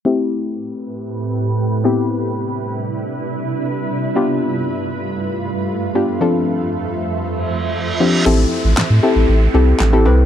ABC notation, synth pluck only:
X:1
M:4/4
L:1/16
Q:1/4=117
K:Am
V:1 name="Synth pluck"
[A,CEG]12- [A,CEG]2 [B,CEG]2- | [B,CEG]12- [B,CEG]2 z2 | [B,DFG]12- [B,DFG]2 [B,DFG]2 | [F,CDFA]12- [F,CDFA]2 [F,CDFG]2 |
[CEGA]4 z2 [CEGA]2 z2 [CEGA]2 z [CEGA] [CEGB]2 |]